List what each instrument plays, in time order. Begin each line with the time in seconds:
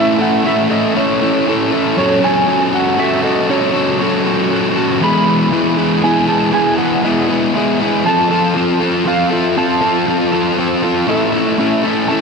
Already playing: overdriven electric guitar A3 C#4 E4 A4, electric slide guitar E5
0.19 overdriven electric guitar C#4 E4 A4, electric slide guitar F#5
0.44 overdriven electric guitar A3 C#4 E4 A4, electric slide guitar E5
0.69 overdriven electric guitar C#4 E4 A4, electric slide guitar D#5
0.95 overdriven electric guitar A3 C#4 E4 A4, electric slide guitar C#5
1.21 overdriven electric guitar C#4 E4 A4
1.46 overdriven electric guitar A3 C#4 E4 A4
1.72 overdriven electric guitar C#4 E4 A4
1.97 overdriven electric guitar F#3 C#4 F#4 A4, electric slide guitar C#5
2.22 overdriven electric guitar C#4 F#4 A4, electric slide guitar G#5
2.47 overdriven electric guitar F#3 C#4 F#4 A4
2.73 overdriven electric guitar C#4 F#4 A4, electric slide guitar F#5
2.98 overdriven electric guitar F#3 C#4 F#4 A4, electric slide guitar E5
3.23 overdriven electric guitar C#4 F#4 A4, electric slide guitar D#5
3.49 overdriven electric guitar F#3 C#4 F#4 A4, electric slide guitar C#5
3.74 overdriven electric guitar C#4 F#4 A4
3.99 overdriven electric guitar F#3 C#4 F#4 A4
4.24 overdriven electric guitar C#4 F#4 A4
4.49 overdriven electric guitar F#3 C#4 F#4 A4
4.75 overdriven electric guitar C#4 F#4 A4
5.01 overdriven electric guitar E3 G#3 B3 E4 G#4, electric slide guitar B5
5.26 overdriven electric guitar B3 E4 G#4
5.51 overdriven electric guitar E3 G#3 B3 E4 G#4
5.77 overdriven electric guitar B3 E4 G#4
6.02 overdriven electric guitar G#3 B3 E4 G#4, electric slide guitar G#5
6.27 overdriven electric guitar B3 E4 G#4, electric slide guitar A5
6.52 overdriven electric guitar E3 G#3 B3 E4 G#4, electric slide guitar G#5
6.78 overdriven electric guitar B3 E4 G#4, electric slide guitar F#5
7.03 overdriven electric guitar E3 G#3 B3 E4 G#4, electric slide guitar E5
7.28 overdriven electric guitar B3 E4 G#4
7.53 overdriven electric guitar G#3 B3 E4 G#4
7.80 overdriven electric guitar B3 E4 G#4
8.05 overdriven electric guitar F3 C4 F4 A4, electric slide guitar A5
8.30 overdriven electric guitar C4 F4 A4
8.55 overdriven electric guitar F3 C4 F4 A4
8.80 overdriven electric guitar C4 F4 A4
9.05 overdriven electric guitar F3 C4 F4 A4, electric slide guitar F5
9.31 overdriven electric guitar C4 F4 A4, electric slide guitar E5
9.56 overdriven electric guitar F3 C4 F4 A4, electric slide guitar A5
9.81 overdriven electric guitar C4 F4 A4
10.06 overdriven electric guitar F3 C4 F4 A4
10.32 overdriven electric guitar C4 F4 A4
10.57 overdriven electric guitar F3 C4 F4 A4
10.83 overdriven electric guitar C4 F4 A4
11.07 overdriven electric guitar A3 C#4 E4 A4, electric slide guitar E5
11.32 overdriven electric guitar C#4 E4 A4
11.47 electric slide guitar D#5
11.58 overdriven electric guitar A3 C#4 E4 A4, electric slide guitar E5
11.83 overdriven electric guitar C#4 E4 A4
12.08 overdriven electric guitar A3 C#4 E4 A4, electric slide guitar A5